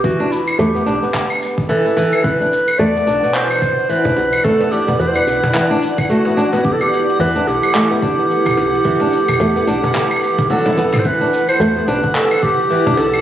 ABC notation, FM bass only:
X:1
M:4/4
L:1/8
Q:"Swing 16ths" 1/4=109
K:Em
V:1 name="FM bass" clef=bass
E,,,2 E,, B,,, z4 | E,,,2 E,, B,,, z3 B,,, | E,,,2 E,, B,,, z4 | E,,,2 E,, B,,, z3 B,,, |
E,,,2 E,, B,,, z3 D,,, | E,,,2 E,, B,,, z3 B,,, |]